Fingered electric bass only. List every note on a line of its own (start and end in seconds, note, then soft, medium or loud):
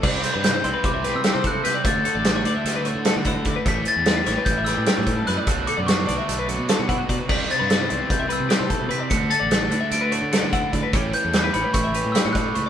0.03 0.21 C2 loud
0.36 0.62 G2 medium
0.65 0.73 C2 medium
0.83 1.11 C2 medium
1.15 1.24 C3 medium
1.35 1.61 C3 medium
1.66 1.75 C3 medium
1.84 2.02 D2 loud
2.15 2.42 A1 medium
2.45 2.54 D2 medium
2.65 2.92 D2 medium
2.95 3.04 D3 medium
3.16 3.43 D3 medium
3.46 3.55 D3 medium
3.66 3.84 A1 loud
3.96 4.23 E2 medium
4.27 4.36 A1 medium
4.46 4.73 A1 medium
4.77 4.86 A2 medium
4.98 5.25 A2 medium
5.28 5.37 F#2 medium
5.47 5.65 B1 loud
5.78 6.05 F#2 medium
6.09 6.18 B1 loud
6.29 6.56 B1 medium
6.58 6.68 B2 medium
6.79 7.06 B2 medium
7.09 7.18 B2 medium
7.30 7.48 C2 loud
7.61 7.87 G2 medium
7.92 8.00 C2 loud
8.11 8.37 C2 medium
8.40 8.49 C3 medium
8.60 8.88 C3 medium
8.90 9.00 C3 medium
9.11 9.29 D2 loud
9.41 9.69 A1 medium
9.70 9.80 D2 loud
9.91 10.19 D2 loud
10.22 10.31 D3 medium
10.43 10.70 D3 medium
10.74 10.82 D3 medium
10.93 11.11 A1 loud
11.25 11.51 E2 medium
11.54 11.63 A1 medium
11.74 12.01 A1 medium
12.05 12.14 A2 medium
12.25 12.52 A2 medium
12.57 12.65 C#2 medium